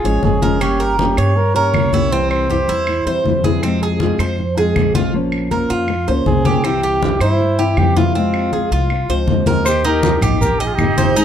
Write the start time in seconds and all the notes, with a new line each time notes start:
Already playing: G#4
0.04 G#1 F3 G#3 C#4 F4 C#5, high conga
0.23 G1 F3 G#3 C#4 F4 G#4, high conga
0.42 F3 G#3 C#4 F4 A#4, high conga
0.61 G3 A#3 C#4 G4, high conga, claves
0.80 A#4, high conga
0.99 G3 A#3 C#4 G4, high conga
1.17 G2 C#5, high conga, claves
1.36 A#4, muted nylon-string guitar stroke, high conga
1.54 A#3 C#4 G4 A#4 C#5, high conga
1.74 C2 G3 A#3 C#4 G4, high conga, claves
1.93 A#3 C#4 E4 G4, high conga
2.11 C3 E3 G3 C4 E4 C5, high conga
2.31 C5, high conga, claves
2.50 E3 G3 C4 E4 G4, high conga
2.68 E2 E4, high conga
2.87 muted nylon-string guitar stroke, high conga, claves
3.06 E2 E3 G3 C4 E4 C5, high conga
3.25 F2 E3 G3 C4 E4, high conga
3.44 E3 G3 C4 E4 G#4, high conga
3.63 C3 F3 G#3 C4 F4, high conga, claves
3.82 G#4, high conga
4.00 F3 G#3 C4 F4, high conga
4.18 F2 C5, high conga, claves
4.38 muted nylon-string guitar stroke, high conga
4.57 F3 G#3 C4 F4 G#4, high conga
4.76 A#1 F3 G#3 C4 F4, high conga, claves
4.95 F3 G#3 C4 F4, high conga
5.13 F3 A#3 C#4 F4 C5, high conga
5.32 high conga, claves
5.51 A#3 C#4 F4 A#4 C5, high conga
5.70 F2 F4, high conga
5.88 muted nylon-string guitar stroke, high conga, claves
6.07 C#2 A#3 C#4 F4 C5, high conga
6.26 C2 A#3 C#4 F4 G#4 C5, high conga
6.45 A#3 C#4 F4 G4 C5, high conga
6.64 C3 E3 G3 C4 E4 G4, high conga, claves
6.83 G4, high conga
7.02 E3 G3 C4 E4 G4, high conga
7.20 G2 E4 C5, high conga, claves
7.40 muted nylon-string guitar stroke, high conga
7.59 E3 G3 C4 E4 G4, high conga
7.77 F2 E3 G3 C4 E4 G4, high conga, claves
7.96 E3 G3 C4 E4 F4, high conga
8.15 C3 F3 G#3 C4 F4, high conga
8.34 high conga, claves
8.53 F3 G#3 C4 F4 G#4, high conga
8.71 C2 F4, high conga
8.90 muted nylon-string guitar stroke, high conga, claves
9.09 C#2 F3 G#3 C4 F4 C5, high conga
9.27 D#2 F3 G#3 C4 F4, high conga
9.46 F3 G#3 C4 F4 A#4, high conga
9.65 D#3 A#3 D#4 G4 C5, high conga, claves, maracas
9.84 A#3 D#4 G4 A#4, high conga, maracas
10.03 high conga, maracas
10.21 A#1 A#3 D#4 G4, high conga, low conga, claves, maracas
10.41 G4 A#4, muted nylon-string guitar stroke, high conga, low conga, maracas
10.60 D#4 G4 D#5, high conga, maracas
10.65 F4 G#4
10.73 D#4 G4
10.78 G#1 D#3 A#3 D#4 G4, high conga, claves, maracas
10.98 C5, high conga, maracas
11.16 D#3 G#3 C4 D#4 G#4, high conga, maracas